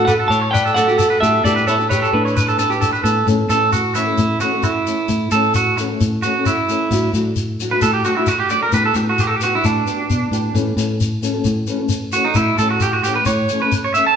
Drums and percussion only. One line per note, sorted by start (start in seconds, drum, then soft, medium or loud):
0.08 shekere loud
0.32 shekere medium
0.55 shekere medium
0.67 shekere soft
0.77 shekere medium
0.88 shekere soft
0.99 shekere loud
1.23 shekere medium
1.46 shekere loud
1.57 shekere soft
1.68 shekere medium
1.80 shekere soft
1.91 shekere loud
2.04 shekere soft
2.27 shekere soft
2.37 shekere loud
2.49 shekere soft
2.59 shekere medium
2.72 shekere soft
2.82 shekere medium
2.95 shekere soft
3.05 shekere medium
3.28 shekere medium
3.50 shekere medium
3.73 shekere medium
3.95 shekere medium
4.18 shekere medium
4.40 shekere medium
4.63 shekere medium
4.87 shekere medium
5.08 shekere medium
5.31 shekere medium
5.54 shekere loud
5.78 shekere medium
6.01 shekere loud
6.23 shekere medium
6.46 shekere medium
6.69 shekere medium
6.91 shekere loud
7.14 shekere medium
7.36 shekere medium
7.60 shekere medium
7.82 shekere loud
8.05 shekere medium
8.26 shekere medium
8.50 shekere medium
8.72 shekere medium
8.94 shekere medium
9.18 shekere medium
9.41 shekere medium
9.64 shekere medium
9.87 shekere medium
10.10 shekere medium
10.33 shekere medium
10.56 shekere medium
10.78 shekere medium
11.01 shekere medium
11.23 shekere medium
11.44 shekere loud
11.67 shekere medium
11.89 shekere medium
12.12 shekere medium
12.34 shekere loud
12.58 shekere medium
12.80 shekere loud
13.04 shekere medium
13.25 shekere loud
13.49 shekere medium
13.72 shekere loud
13.95 shekere medium